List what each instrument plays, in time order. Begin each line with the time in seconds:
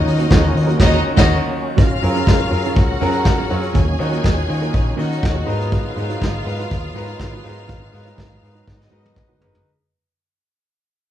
Already playing: grand piano D#3 D#4 F4 F#4 C#5, tonewheel organ D#3 F#3 A#3 C#4, string section D#4 D#5
0.05 fingered electric bass D#3, muted clean electric guitar stroke, open hi-hat
0.19 clean electric guitar A#3 C#4 F#4 C#5, closed hi-hat
0.29 fingered electric bass D#2, grand piano D#3 D#4 F4 F#4 C#5, clean electric guitar A#3 C#4 F#4 A#4, kick, snare, closed hi-hat
0.44 muted clean electric guitar stroke
0.54 fingered electric bass D#3, grand piano C#5, muted clean electric guitar stroke, open hi-hat
0.67 clean electric guitar A#3 C#4 F#4 A#4, closed hi-hat
0.77 fingered electric bass D#2, grand piano D#3 D#4, clean electric guitar A#3 C#4 F#4 A#4, string section D#4 D#5, kick, snare, crash
0.81 grand piano F#4 C#5 D#5
1.16 fingered electric bass D#2, grand piano D#3 D#4 F#4 C#5 F#5, clean electric guitar A#3 C#4 F#4 A#4, string section D#4 D#5, kick, snare, crash
1.77 fingered electric bass F#1, clean electric guitar F#3 C#4 F4 A#4, tonewheel organ F#3 C#4 A#4, string section F4 F5, kick, closed hi-hat
1.90 muted clean electric guitar stroke
2.01 fingered electric bass F#2, grand piano F#3 C#4 F4 G#4 A#4, muted clean electric guitar stroke, open hi-hat
2.14 clean electric guitar F#3 C#4 F4 C#5, closed hi-hat
2.27 fingered electric bass F#1, clean electric guitar F#3 C#4 F4 A#4, kick, snare, closed hi-hat
2.41 muted clean electric guitar stroke
2.51 fingered electric bass F#2, grand piano F#3 C#4 F4 G#4 A#4, muted clean electric guitar stroke, open hi-hat
2.65 clean electric guitar F#3 C#4 F4 A#4, closed hi-hat
2.75 fingered electric bass C#2, string section F#4 F#5, kick, closed hi-hat
2.91 muted clean electric guitar stroke
3.01 fingered electric bass F#2, grand piano F#3 C#4 F#4 G#4 A#4, clean electric guitar F#3 C#4 F4 A#4, open hi-hat
3.13 muted clean electric guitar stroke, closed hi-hat
3.25 fingered electric bass F#1, muted clean electric guitar stroke, kick, snare, closed hi-hat
3.38 clean electric guitar F#3 C#4 F4 A#4
3.49 fingered electric bass F#2, clean electric guitar F#3 C#4 F4 A#4, grand piano F#3 C#4 F4 G#4 C#5, open hi-hat
3.63 muted clean electric guitar stroke, closed hi-hat
3.74 fingered electric bass D#2, tonewheel organ D#3 F#3 A#3, clean electric guitar A#3 C#4 F#4 A#4, string section G#4 G#5, kick, closed hi-hat
3.88 muted clean electric guitar stroke
3.99 grand piano D#3 D#4 F4 F#4 C#5, fingered electric bass D#3, muted clean electric guitar stroke, open hi-hat
4.12 clean electric guitar A#3 C#4 F#4 C#5, closed hi-hat
4.23 fingered electric bass D#2, clean electric guitar A#3 C#4 F#4 A#4, kick, snare, closed hi-hat
4.36 muted clean electric guitar stroke
4.48 grand piano D#3 D#4 F4 F#4 C#5, fingered electric bass D#3, muted clean electric guitar stroke, open hi-hat
4.62 clean electric guitar A#3 C#4 F#4 A#4, closed hi-hat
4.74 fingered electric bass A#1, kick, closed hi-hat
4.86 muted clean electric guitar stroke
4.96 grand piano D#3 C#4 D#4 F#4 D#5, fingered electric bass D#3, clean electric guitar A#3 C#4 F#4 A#4, string section F#4 F#5, open hi-hat
5.11 muted clean electric guitar stroke, closed hi-hat
5.23 fingered electric bass D#2, muted clean electric guitar stroke, kick, snare, closed hi-hat
5.34 clean electric guitar A#3 C#4 F#4 A#4
5.46 fingered electric bass G#2, grand piano G#3 D#4 F#4 A#4 B4, clean electric guitar G#3 D#4 F#4 B4, tonewheel organ G#3 B3 D#4, string section F4 F5, open hi-hat
5.60 muted clean electric guitar stroke, closed hi-hat
5.71 clean electric guitar G#3 D#4 F#4 B4, kick, closed hi-hat
5.85 muted clean electric guitar stroke
5.96 fingered electric bass G#2, grand piano G#3 D#4 F#4 A#4 B4, muted clean electric guitar stroke, open hi-hat
6.09 clean electric guitar G#3 D#4 F#4 C#5, closed hi-hat
6.21 fingered electric bass G#1, clean electric guitar G#3 D#4 F#4 B4, kick, snare, closed hi-hat
6.34 muted clean electric guitar stroke
6.45 fingered electric bass G#2, grand piano G#3 D#4 F#4 A#4 B4, muted clean electric guitar stroke, open hi-hat
6.59 clean electric guitar G#3 D#4 F#4 B4, closed hi-hat
6.71 fingered electric bass D#2, kick, closed hi-hat
6.84 muted clean electric guitar stroke
6.94 fingered electric bass G#2, clean electric guitar G#3 D#4 F#4 B4, grand piano G#3 D#4 F#4 A#4 B4, open hi-hat
7.08 muted clean electric guitar stroke, closed hi-hat
7.20 fingered electric bass G#1, muted clean electric guitar stroke, kick, snare, closed hi-hat
7.33 clean electric guitar G#3 D#4 F#4 B4
7.44 fingered electric bass G#2, grand piano G#3 D#4 F#4 A#4 B4, clean electric guitar G#3 D#4 F#4 B4, open hi-hat
7.57 muted clean electric guitar stroke, closed hi-hat
7.68 fingered electric bass G#1, clean electric guitar G#3 D#4 F#4 B4, kick, closed hi-hat
7.81 muted clean electric guitar stroke
7.93 fingered electric bass G#2, grand piano G#3 D#4 F#4 A#4 B4, muted clean electric guitar stroke, open hi-hat
8.05 clean electric guitar G#3 D#4 F#4 C#5, closed hi-hat
8.17 fingered electric bass G#1, clean electric guitar G#3 D#4 F#4 B4, kick, snare, closed hi-hat
8.30 muted clean electric guitar stroke
8.42 fingered electric bass G#2, grand piano G#3 D#4 F#4 A#4 B4, open hi-hat
8.53 clean electric guitar G#3 D#4 F#4 B4, closed hi-hat
8.67 fingered electric bass G#2, string section D#4 D#5, kick, snare
8.80 muted clean electric guitar stroke, snare
8.90 fingered electric bass G#2, clean electric guitar G#3 D#4 F#4 B4, grand piano G#3 D#4 F#4 A#4 B4
9.03 muted clean electric guitar stroke, high tom
9.16 fingered electric bass F#1, muted clean electric guitar stroke, kick, mid tom
9.29 clean electric guitar G#3 D#4 F#4 B4
9.39 fingered electric bass G1, clean electric guitar G#3 D#4 F#4 B4, grand piano G#3 D#4 F#4 A#4 B4, floor tom
9.53 muted clean electric guitar stroke, floor tom